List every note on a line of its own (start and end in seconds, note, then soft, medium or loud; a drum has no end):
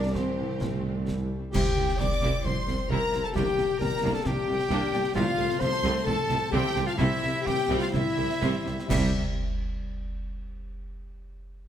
0.00 1.29 C2 loud
0.00 1.30 C2 loud
0.00 0.60 C3 medium
0.00 0.76 G3 medium
0.00 0.44 C4 medium
0.00 0.14 D4 medium
0.00 0.14 A#4 medium
0.00 0.15 A#4 medium
0.00 0.14 D5 loud
0.00 0.16 D5 medium
0.00 0.17 D6 medium
0.12 0.58 E3 medium
0.12 1.06 C4 medium
0.12 1.07 E4 medium
0.12 1.08 G4 medium
0.12 1.06 G4 medium
0.12 1.06 C5 medium
0.12 1.07 C5 medium
0.12 1.08 C6 medium
0.12 concert bass drum medium
0.12 snare medium
0.30 1.22 G4 medium
0.46 0.91 C4 medium
0.60 1.53 C3 medium
0.60 1.07 A3 medium
0.60 concert bass drum medium
0.60 snare medium
0.77 2.43 G3 medium
0.92 1.38 C4 medium
1.07 1.54 G3 medium
1.07 3.38 E4 medium
1.07 concert bass drum medium
1.07 snare medium
1.24 1.76 G4 soft
1.39 1.65 C4 medium
1.52 1.63 C2 medium
1.52 1.62 C2 loud
1.52 1.62 C3 loud
1.52 3.34 C3 medium
1.52 1.76 C4 medium
1.52 1.76 E4 medium
1.52 1.96 G4 loud
1.52 2.01 G4 loud
1.52 1.96 G5 medium
1.52 1.97 G5 loud
1.52 concert bass drum medium
1.52 snare medium
1.52 crash medium
1.66 2.55 C4 medium
1.76 1.86 C2 medium
1.76 1.85 C2 medium
1.76 1.85 C3 medium
1.76 1.85 C4 medium
1.76 1.85 E4 medium
1.76 2.67 G4 medium
1.89 2.33 C5 medium
1.89 snare medium
1.99 2.09 C2 medium
1.99 2.08 C2 medium
1.99 2.07 C3 medium
1.99 2.09 G3 medium
1.99 2.08 C4 medium
1.99 2.45 D5 loud
1.99 2.47 D5 loud
1.99 2.21 E5 medium
1.99 2.45 D6 loud
1.99 2.46 D6 loud
1.99 concert bass drum medium
1.99 snare medium
2.11 3.00 G5 medium
2.11 snare medium
2.22 2.31 C2 loud
2.22 2.30 C2 medium
2.22 2.30 C3 medium
2.22 2.44 C4 medium
2.22 2.44 E4 medium
2.22 2.89 E5 medium
2.22 snare medium
2.34 2.78 C5 medium
2.43 2.54 C2 medium
2.43 2.53 C2 medium
2.43 2.53 C3 medium
2.43 5.17 G3 medium
2.43 2.53 C4 medium
2.43 2.54 E4 medium
2.43 2.89 C5 loud
2.43 2.90 C5 medium
2.43 2.90 C6 loud
2.43 2.90 C6 medium
2.43 2.89 C6 medium
2.43 concert bass drum medium
2.56 3.37 C4 medium
2.67 2.76 C2 medium
2.67 2.76 C3 medium
2.67 2.77 G3 medium
2.67 2.76 C4 medium
2.67 3.56 G4 medium
2.67 snare medium
2.79 3.22 C5 medium
2.89 2.98 C2 loud
2.89 2.98 C2 medium
2.89 2.97 C3 loud
2.89 3.12 C4 medium
2.89 3.12 E4 loud
2.89 3.24 A#4 loud
2.89 3.25 A#4 medium
2.89 3.11 E5 medium
2.89 3.26 A#5 loud
2.89 3.24 A#5 loud
2.89 concert bass drum medium
3.01 3.91 G5 medium
3.12 3.21 C2 medium
3.12 3.21 C3 medium
3.12 3.22 C4 medium
3.12 3.22 E4 medium
3.12 3.37 E5 medium
3.12 snare medium
3.23 3.35 A4 loud
3.23 3.36 A4 medium
3.23 3.37 C5 medium
3.23 3.36 A5 medium
3.23 3.29 A5 medium
3.23 3.38 A5 medium
3.34 3.44 C2 loud
3.34 4.24 C3 medium
3.34 3.43 C3 medium
3.34 3.57 A#3 loud
3.34 3.57 D4 medium
3.34 3.79 G4 loud
3.34 3.80 G4 loud
3.34 3.79 G5 loud
3.34 3.83 G5 loud
3.34 3.80 G5 medium
3.34 concert bass drum medium
3.34 snare medium
3.46 4.36 A#3 medium
3.57 3.66 C2 medium
3.57 3.65 C3 medium
3.57 3.67 A#3 medium
3.57 3.67 D4 medium
3.57 4.47 G4 medium
3.57 snare medium
3.69 4.13 A#4 medium
3.79 3.89 C2 medium
3.79 3.88 C3 medium
3.79 3.90 G3 medium
3.79 3.89 A#3 medium
3.79 4.13 A#4 loud
3.79 4.17 A#4 loud
3.79 4.02 D5 medium
3.79 4.13 A#5 loud
3.79 4.14 A#5 loud
3.79 concert bass drum medium
3.79 snare medium
3.92 4.81 G5 medium
4.02 4.11 C2 loud
4.02 4.12 C2 loud
4.02 4.11 C3 loud
4.02 4.25 A#3 medium
4.02 4.25 D4 medium
4.02 4.70 D5 medium
4.12 4.24 A4 loud
4.12 4.29 A4 loud
4.12 4.58 A#4 medium
4.12 4.25 A5 medium
4.12 4.19 A5 medium
4.12 4.26 A5 loud
4.23 4.34 C2 medium
4.23 4.33 C3 medium
4.23 5.14 C3 medium
4.23 4.35 D4 medium
4.23 5.14 G4 loud
4.23 5.16 G5 loud
4.23 5.14 G5 loud
4.23 concert bass drum medium
4.23 snare medium
4.27 4.35 A#3 medium
4.27 5.14 G4 loud
4.27 5.17 G5 loud
4.37 5.18 A#3 medium
4.46 4.56 C2 medium
4.46 4.56 C3 medium
4.46 4.57 G3 medium
4.46 4.56 A#3 medium
4.46 5.18 G4 medium
4.59 5.03 A#4 medium
4.59 snare medium
4.69 4.78 C2 loud
4.69 4.78 C3 loud
4.69 4.92 A#3 loud
4.69 4.92 D4 loud
4.69 4.92 D5 medium
4.69 concert bass drum medium
4.69 snare medium
4.82 5.18 G5 medium
4.92 5.01 C2 medium
4.92 5.01 C3 medium
4.92 5.02 A#3 medium
4.92 5.02 D4 medium
4.92 5.17 D5 medium
4.92 snare medium
5.04 5.17 A#4 medium
5.04 snare medium
5.14 5.23 C2 loud
5.14 6.98 C3 loud
5.14 5.23 C3 loud
5.14 5.37 A3 medium
5.14 5.37 C4 medium
5.14 5.59 F4 loud
5.14 5.62 F4 loud
5.14 5.60 F5 loud
5.14 5.59 F5 loud
5.14 concert bass drum loud
5.14 snare medium
5.14 crash soft
5.27 6.16 C4 medium
5.37 5.46 C2 medium
5.37 5.46 C3 medium
5.37 5.48 A3 medium
5.37 5.48 C4 medium
5.37 6.28 A4 medium
5.48 5.92 C5 medium
5.48 snare medium
5.59 5.69 C2 medium
5.59 5.69 C3 medium
5.59 5.71 F3 loud
5.59 5.71 A3 loud
5.59 6.05 C5 loud
5.59 5.82 C6 medium
5.59 6.05 C6 loud
5.59 6.06 C6 loud
5.59 concert bass drum medium
5.59 snare medium
5.72 6.63 A5 medium
5.72 snare medium
5.83 5.92 C2 loud
5.83 5.92 C3 loud
5.83 6.06 A3 loud
5.83 6.06 C4 loud
5.83 6.52 C6 medium
5.83 snare medium
5.94 6.40 C5 medium
6.03 6.15 C2 medium
6.03 6.15 C3 medium
6.03 7.01 A3 medium
6.03 6.15 A3 loud
6.03 6.50 A4 loud
6.03 6.51 A4 loud
6.03 6.51 A5 loud
6.03 6.52 A5 loud
6.03 6.51 A5 loud
6.03 concert bass drum loud
6.08 6.16 C4 medium
6.17 7.11 C4 medium
6.29 6.38 C2 loud
6.29 6.38 C2 medium
6.29 6.37 C3 loud
6.29 6.38 F3 medium
6.29 6.38 A3 medium
6.29 7.01 A4 medium
6.29 snare medium
6.41 6.86 C5 medium
6.51 6.60 C2 loud
6.51 6.62 C2 loud
6.51 6.61 C3 loud
6.51 6.75 A3 loud
6.51 6.74 C4 loud
6.51 6.86 G4 loud
6.51 6.88 G5 loud
6.51 6.74 C6 loud
6.51 concert bass drum medium
6.64 7.01 A5 medium
6.75 6.85 C2 loud
6.75 6.84 C2 medium
6.75 6.83 C3 medium
6.75 6.84 A3 medium
6.75 6.85 C4 loud
6.75 7.46 C6 loud
6.75 snare medium
6.86 6.92 F4 loud
6.86 6.99 F4 loud
6.86 7.34 C5 loud
6.86 6.99 F5 loud
6.86 6.92 F5 loud
6.86 6.99 F5 loud
6.95 7.08 C2 loud
6.95 7.07 C2 loud
6.95 7.06 C3 loud
6.95 8.87 C3 loud
6.95 7.44 E4 loud
6.95 7.48 E4 loud
6.95 7.47 E5 loud
6.95 concert bass drum medium
6.95 snare medium
6.99 7.22 G3 loud
6.99 7.22 C4 loud
6.99 7.46 E5 loud
7.12 8.04 C4 medium
7.22 7.31 C2 loud
7.22 7.30 C2 medium
7.22 7.30 C3 medium
7.22 7.31 G3 medium
7.22 7.31 C4 medium
7.22 8.17 G4 medium
7.22 snare medium
7.35 7.81 C5 loud
7.42 7.79 G4 loud
7.42 7.81 G5 loud
7.46 7.55 C2 medium
7.46 7.54 C2 medium
7.46 7.54 C3 medium
7.46 7.54 E3 loud
7.46 7.54 G3 loud
7.46 7.80 G4 loud
7.46 7.81 G5 loud
7.46 7.69 C6 medium
7.46 concert bass drum medium
7.46 snare medium
7.58 8.52 G5 medium
7.69 7.77 C2 loud
7.69 7.79 C2 loud
7.69 7.78 C3 loud
7.69 7.92 G3 loud
7.69 7.92 C4 loud
7.69 8.41 C6 medium
7.77 7.91 F4 loud
7.77 7.86 F4 loud
7.77 7.93 F5 loud
7.82 8.28 C5 medium
7.82 7.86 F5 medium
7.82 7.93 F5 loud
7.89 8.02 C2 medium
7.89 8.85 E4 loud
7.93 8.01 C2 medium
7.93 8.01 C3 medium
7.93 8.89 G3 medium
7.93 8.02 G3 medium
7.93 8.02 C4 loud
7.93 8.89 E4 loud
7.93 8.89 E5 loud
7.93 8.62 E5 loud
7.93 concert bass drum medium
7.93 snare medium
8.06 8.89 C4 medium
8.16 8.26 C2 loud
8.16 8.26 C2 medium
8.16 8.25 C3 medium
8.16 8.25 E3 medium
8.16 8.26 G3 medium
8.16 10.86 G4 medium
8.29 8.77 C5 medium
8.29 snare medium
8.41 8.51 C2 loud
8.41 8.49 C2 loud
8.41 8.49 C3 loud
8.41 8.64 G3 loud
8.41 8.64 C4 loud
8.41 8.65 C6 medium
8.41 concert bass drum medium
8.41 snare medium
8.54 10.86 G5 medium
8.65 8.75 C2 medium
8.65 8.74 C2 medium
8.65 8.74 C3 medium
8.65 8.73 G3 medium
8.65 8.73 C4 medium
8.65 10.86 C6 medium
8.65 snare medium
8.78 8.89 C5 medium
8.78 snare medium
8.86 9.17 C3 medium
8.86 9.17 G3 loud
8.86 9.10 G3 loud
8.86 9.17 G3 medium
8.86 9.08 E4 loud
8.86 9.17 E4 medium
8.86 9.17 E5 loud
8.86 concert bass drum medium
8.86 crash medium
8.91 9.11 C2 loud
8.91 9.18 C2 loud
8.91 9.18 C3 loud
8.91 9.17 C4 medium
8.91 9.18 C5 loud
8.91 9.18 E5 loud
8.91 snare medium